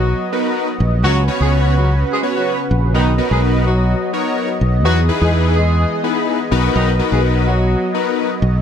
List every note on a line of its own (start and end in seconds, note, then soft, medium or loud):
0.00 0.12 B1 medium
0.00 0.30 F#3 medium
0.00 1.02 F#3 medium
0.00 1.00 B3 medium
0.00 0.30 F#4 medium
0.00 1.00 D#5 medium
0.32 0.68 B3 medium
0.32 0.68 D#4 medium
0.32 0.68 F#4 medium
0.32 0.68 A#4 medium
0.32 0.68 B4 medium
0.80 1.04 A#1 loud
1.04 1.28 C#2 loud
1.04 2.93 C#3 medium
1.04 1.22 F#3 loud
1.04 1.16 B3 medium
1.04 1.16 C#4 medium
1.04 2.93 C#4 medium
1.04 1.22 F#4 loud
1.04 1.16 F#4 medium
1.04 2.93 F#4 medium
1.04 2.93 B4 medium
1.04 1.16 B4 medium
1.04 1.16 C#5 medium
1.28 1.74 B3 medium
1.28 1.74 C#4 medium
1.28 1.74 F#4 medium
1.28 1.74 B4 medium
1.28 1.74 C#5 medium
1.40 2.03 C#2 medium
1.40 1.49 G#3 medium
1.40 1.49 G#4 medium
1.75 1.93 F#3 medium
1.75 1.93 F#4 medium
2.12 2.20 G#3 medium
2.12 2.20 G#4 medium
2.23 2.58 B3 medium
2.23 2.58 C#4 medium
2.23 2.58 F#4 medium
2.23 2.58 B4 medium
2.23 2.59 C#5 medium
2.36 2.54 F#3 medium
2.36 2.54 F#4 medium
2.71 2.95 A#1 medium
2.94 3.19 B1 loud
2.94 3.13 D#3 medium
2.94 4.83 F#3 medium
2.94 3.07 B3 medium
2.94 8.62 B3 medium
2.94 3.07 D#4 medium
2.94 3.13 D#4 medium
2.94 3.07 F#4 medium
2.94 3.07 A#4 medium
2.94 3.07 B4 medium
2.94 8.62 D#5 medium
3.18 3.64 B3 medium
3.18 3.65 D#4 medium
3.18 3.65 F#4 medium
3.18 3.65 A#4 medium
3.18 3.65 B4 medium
3.31 3.93 B1 medium
3.31 3.39 G#3 medium
3.31 3.39 G#4 medium
3.66 4.11 F#3 medium
3.66 4.11 F#4 medium
4.13 4.49 B3 medium
4.13 4.49 D#4 medium
4.13 4.49 F#4 medium
4.13 4.49 A#4 medium
4.13 4.49 C#5 medium
4.61 4.85 B1 medium
4.85 5.09 E2 loud
4.85 6.50 E3 medium
4.85 5.03 F#3 loud
4.85 4.97 B3 medium
4.85 4.97 D#4 medium
4.85 4.97 E4 medium
4.85 5.03 F#4 loud
4.85 4.97 G#4 medium
4.85 6.50 G#4 medium
4.85 4.97 B4 medium
5.09 5.55 B3 medium
5.09 5.55 D#4 medium
5.09 5.55 E4 medium
5.09 5.55 G#4 medium
5.09 5.55 B4 medium
5.21 5.84 E2 medium
5.21 5.30 G#3 medium
5.21 5.30 G#4 medium
5.57 6.01 G#3 medium
5.57 6.01 G#4 medium
6.04 6.39 B3 medium
6.04 6.39 D#4 medium
6.04 6.39 E4 medium
6.04 6.39 G#4 medium
6.04 6.39 B4 medium
6.51 6.67 B1 medium
6.51 8.62 F#3 medium
6.51 6.90 B3 loud
6.51 6.90 D#4 medium
6.51 6.90 F#4 medium
6.51 6.90 A#4 medium
6.51 6.90 B4 loud
6.75 6.99 B1 loud
6.75 6.93 D#3 medium
6.75 6.93 D#4 loud
6.99 7.45 B3 medium
6.99 7.46 D#4 medium
6.99 7.46 F#4 medium
6.99 7.46 A#4 medium
6.99 7.46 B4 medium
7.12 7.74 B1 medium
7.12 7.20 G#3 medium
7.12 7.20 G#4 medium
7.47 7.92 F#3 medium
7.47 7.92 F#4 medium
7.94 8.30 B3 medium
7.94 8.30 D#4 medium
7.94 8.30 F#4 medium
7.94 8.30 A#4 medium
7.94 8.30 B4 medium
8.42 8.62 B1 medium